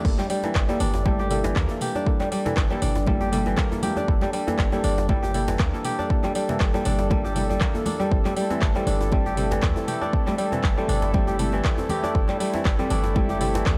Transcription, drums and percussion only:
0.05 kick, crash
0.19 clap, muted conga, high conga, djembe tone
0.30 open hi-hat
0.43 djembe slap, djembe tone
0.55 kick, cross-stick, clap, muted conga
0.68 djembe tone
0.80 open hi-hat, low conga
0.94 djembe slap, djembe tone
1.06 kick, muted conga, high conga
1.19 djembe tone
1.31 mid tom, open hi-hat
1.44 djembe slap, muted conga, djembe tone
1.56 kick, cross-stick, clap, low conga
1.69 djembe tone
1.81 mid tom, open hi-hat, muted conga
1.95 djembe tone
2.07 kick
2.20 clap, muted conga, high conga, djembe tone
2.32 open hi-hat
2.46 mid tom, djembe slap, djembe tone
2.57 kick, cross-stick, clap, muted conga
2.70 djembe tone
2.82 mid tom, open hi-hat
2.95 djembe slap, djembe tone
3.06 kick, muted conga, high conga, low conga
3.21 djembe tone
3.32 mid tom, open hi-hat, high conga
3.46 muted conga, djembe tone
3.57 kick, cross-stick, clap, low conga
3.72 djembe tone
3.83 open hi-hat, muted conga, high conga, low conga
3.96 djembe tone
4.08 kick
4.21 clap, muted conga, high conga, djembe tone
4.33 open hi-hat
4.48 djembe slap, djembe tone
4.59 kick, cross-stick, clap, muted conga
4.72 djembe tone
4.84 open hi-hat, low conga
4.98 djembe slap, djembe tone
5.09 kick, muted conga, high conga
5.24 djembe tone
5.34 mid tom, open hi-hat
5.48 djembe slap, muted conga, djembe tone
5.59 kick, cross-stick, clap, low conga
5.74 djembe tone
5.85 mid tom, open hi-hat, muted conga
5.99 djembe tone
6.10 kick
6.23 clap, muted conga, djembe tone, high conga
6.35 open hi-hat
6.49 mid tom, djembe slap, djembe tone
6.60 kick, cross-stick, clap, muted conga
6.74 djembe tone
6.85 mid tom, open hi-hat, low conga
6.99 djembe slap, djembe tone
7.11 kick, muted conga, high conga, low conga
7.25 djembe tone
7.36 mid tom, open hi-hat, high conga
7.51 muted conga, djembe tone
7.61 kick, cross-stick, clap, low conga
7.75 djembe tone
7.86 open hi-hat, muted conga, high conga, low conga
8.00 djembe tone
8.12 kick
8.25 clap, muted conga, djembe tone, high conga
8.37 open hi-hat
8.50 djembe slap, djembe tone
8.62 kick, cross-stick, clap, muted conga
8.75 djembe tone
8.87 open hi-hat, low conga
9.01 djembe slap, djembe tone
9.12 kick, muted conga, high conga
9.26 djembe tone
9.37 mid tom, open hi-hat
9.51 muted conga, djembe slap, djembe tone
9.62 kick, cross-stick, clap, low conga
9.76 djembe tone
9.88 mid tom, open hi-hat, muted conga
10.02 djembe tone
10.13 kick
10.27 clap, muted conga, high conga, djembe tone
10.38 open hi-hat
10.52 mid tom, djembe slap, djembe tone
10.64 kick, cross-stick, clap, muted conga
10.78 djembe tone
10.89 mid tom, open hi-hat
11.02 djembe slap, djembe tone
11.14 kick, muted conga, high conga, low conga
11.27 djembe tone
11.39 mid tom, open hi-hat, high conga
11.52 muted conga, djembe tone
11.65 kick, cross-stick, clap, low conga
11.78 djembe tone
11.89 open hi-hat, muted conga, high conga, low conga
12.04 djembe tone
12.15 kick
12.28 clap, muted conga, high conga, djembe tone
12.40 open hi-hat
12.54 djembe slap, djembe tone
12.65 kick, cross-stick, clap, muted conga
12.79 djembe tone
12.90 open hi-hat, low conga
13.04 djembe slap, djembe tone
13.16 kick, muted conga, high conga
13.29 djembe tone
13.41 mid tom, open hi-hat
13.54 muted conga, djembe slap, djembe tone
13.66 kick, cross-stick, clap, low conga

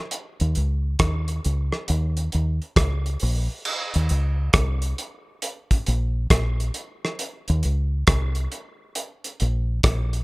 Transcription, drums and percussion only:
0.11 closed hi-hat
0.40 closed hi-hat
0.55 closed hi-hat
0.99 kick, cross-stick, closed hi-hat
1.28 closed hi-hat
1.44 closed hi-hat
1.72 cross-stick
1.88 closed hi-hat
2.17 closed hi-hat
2.32 closed hi-hat
2.62 closed hi-hat
2.76 kick, cross-stick, closed hi-hat
3.06 closed hi-hat
3.20 open hi-hat
3.65 crash
3.94 closed hi-hat
4.09 closed hi-hat
4.53 kick, cross-stick, closed hi-hat
4.82 closed hi-hat
4.98 closed hi-hat
5.42 closed hi-hat
5.71 kick, closed hi-hat
5.86 closed hi-hat
6.30 kick, cross-stick, closed hi-hat
6.60 closed hi-hat
6.74 closed hi-hat
7.05 cross-stick
7.19 closed hi-hat
7.48 closed hi-hat
7.63 closed hi-hat
8.07 kick, cross-stick, closed hi-hat
8.35 closed hi-hat
8.52 closed hi-hat
8.95 closed hi-hat
9.24 closed hi-hat
9.40 closed hi-hat
9.83 kick, cross-stick, closed hi-hat
10.13 closed hi-hat

